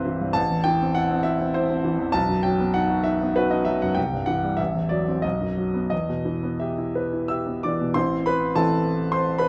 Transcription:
Already playing: C2 G2 E3 C4 E4 B4 C5
0.05 E3
0.21 G2
0.33 A1 A5
0.50 E2
0.64 E3 G5
0.81 C4
0.95 E4 F#5
1.11 C4
1.23 E4 E5
1.41 C4
1.54 E4 C5
1.70 C4
1.84 E3
1.98 E2
2.12 B1 A5
2.28 F#2
2.43 F#3 G5
2.59 B3
2.74 D#4 F#5
2.89 F#4
3.04 D#4 E5
3.22 B3
3.36 F#4 B4
3.51 D#4 D#5
3.65 F#3 E5
3.82 F#2 F#5
3.94 C2 G5
4.13 G2
4.26 E3 F#5
4.43 G3
4.57 A1 E5
4.75 E2
4.89 F#3 D5
5.08 C4
5.22 B1 D#5
5.40 F#2
5.57 F#3
5.74 B3
5.90 E2 D#5
6.09 B2
6.25 E3
6.43 B3
6.60 G4 E5
6.78 E4
6.95 B4
7.13 E4
7.28 G4 E5 E6
7.46 B3
7.63 E3 D5 D6
7.81 B2
7.94 A1 E3 C4 E4 C5 C6
8.26 B4 B5
8.55 A1 E3 C4 E4 A4 A5
9.12 C5 C6
9.38 B4 B5

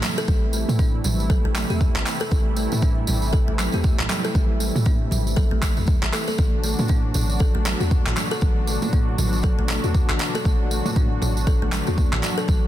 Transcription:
Already playing: C3 E3 G3 A3 E4
0.02 clap, tambourine, high conga, low conga
0.18 A4, tambourine
0.28 A1 A3, kick, tambourine, low conga
0.53 A3, tambourine
0.68 A2, mid tom, tambourine, high conga
0.79 D4, kick, tambourine
1.04 A1 G3, mid tom, tambourine, low conga
1.20 tambourine
1.30 A4, kick, tambourine, high conga, low conga
1.44 A1 A3
1.55 clap, tambourine, high conga, low conga
1.70 E2 G4, tambourine
1.81 kick, tambourine
1.96 A1 E3, clap, high conga
2.06 clap, tambourine
2.20 A4, tambourine, high conga
2.31 A1 A3, kick, tambourine
2.56 A3, tambourine
2.72 A2, mid tom, tambourine, high conga
2.82 D4, kick, tambourine
3.07 A1 G3, mid tom, tambourine
3.22 tambourine
3.33 A4, kick
3.48 A1 A3
3.59 clap, tambourine, low conga
3.72 E2 G4, tambourine, high conga
3.84 kick, tambourine
3.99 A1 E3, clap, mid tom
4.09 clap, tambourine, high conga, low conga
4.25 A4, tambourine
4.35 A1 A3, kick, tambourine, low conga
4.60 A3, tambourine
4.75 A2, mid tom, tambourine, high conga
4.86 D4, kick, tambourine
5.11 A1 G3, mid tom, tambourine, low conga
5.27 tambourine
5.36 A4, kick, tambourine, high conga, low conga
5.51 A1 A3
5.62 kick, clap, tambourine, high conga, low conga
5.77 E2 A3, tambourine
5.86 kick, tambourine
6.03 A1 E3, clap, high conga
6.13 A4, clap, tambourine
6.27 A4, tambourine, high conga
6.38 A1 B2 D3 F#3 A3 D4 F#4, kick, tambourine
6.63 A3, tambourine
6.79 A2, mid tom, tambourine, high conga
6.88 D4, kick, tambourine
7.14 A1 F#3, mid tom, tambourine
7.30 tambourine
7.39 A4, kick, tambourine
7.55 A1 A3
7.65 clap, tambourine, low conga
7.80 E2 F#4, tambourine, high conga
7.91 kick, tambourine
8.06 A1 E3, clap, mid tom
8.17 clap, tambourine, high conga, low conga
8.31 A4, tambourine
8.41 A1 A3, kick, tambourine, low conga
8.67 A3, tambourine
8.82 A2, mid tom, tambourine, high conga
8.93 D4, kick, tambourine
9.18 A1 F#3, mid tom, tambourine, low conga
9.33 tambourine
9.43 A4, kick, tambourine, high conga, low conga
9.59 A1 A3
9.68 clap, tambourine, high conga, low conga
9.84 E2 F#4, tambourine
9.95 kick, tambourine
10.08 A1 E3, clap, high conga
10.19 clap, tambourine
10.35 A4, tambourine, high conga
10.45 A1 A3, kick, tambourine
10.71 A3, tambourine
10.85 A2, mid tom, tambourine, high conga
10.96 D4, kick, tambourine
11.22 A1 F#3, mid tom, tambourine
11.37 tambourine
11.47 A4, kick, tambourine
11.62 A1 A3
11.72 clap, tambourine, low conga
11.87 E2 F#4, tambourine, high conga
11.98 kick, tambourine
12.12 A1 E3, clap, mid tom
12.23 clap, tambourine, high conga, low conga
12.38 A4, tambourine
12.48 A1 A3, kick, tambourine, low conga

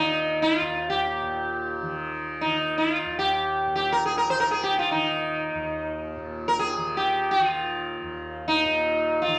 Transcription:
Already playing: D#2 A#2 D#3 D#4
0.42 F4
0.59 D#2
0.90 G4
1.21 A#2
1.82 D#3
2.41 D#4
2.45 D#3
2.78 F4
3.04 D#2
3.19 G4
3.66 A#2
3.75 G4
3.92 A#4
4.06 G#4
4.18 A#4
4.30 D#3 C5
4.40 A#4
4.51 G#4
4.63 G4
4.79 F4
4.91 D#3 D#4
5.54 D#2
6.16 A#2
6.48 A#4
6.59 G#4
6.77 D#3
6.97 G4
7.31 F#4
7.39 D#3
7.47 F4
8.02 D#2
8.48 D#4
8.64 A#2
9.22 F4
9.27 D#3

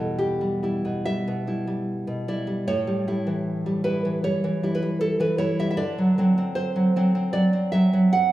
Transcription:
Already playing: E2 G3 E4 A4
0.00 B2
0.19 G4
0.41 G3
0.63 G3 E4
0.85 B2
1.05 G3 E5
1.28 B2
1.47 G3 E4
1.67 G3
2.07 B2
2.28 G3 E4 D5
2.47 G3
2.67 A2 C#5
2.87 G3
3.08 G3 E4
3.27 E3
3.66 G3
3.84 G3 E4 B4
4.05 E3
4.24 G3 C#5
4.44 E3
4.63 G3 E4
4.75 B4
4.82 G3
5.01 A4
5.20 E3 B4
5.38 G3 E4 C#5
5.59 G3 E5
5.71 E5
5.77 D3 D5
5.98 F#3
6.18 F#3 C4
6.38 C4
6.55 C5
6.76 F#3
6.96 F#3 C4
7.15 C4
7.33 F#3 D5
7.53 C4
7.72 F#3 C4 E5
7.93 F#3
8.13 F#5

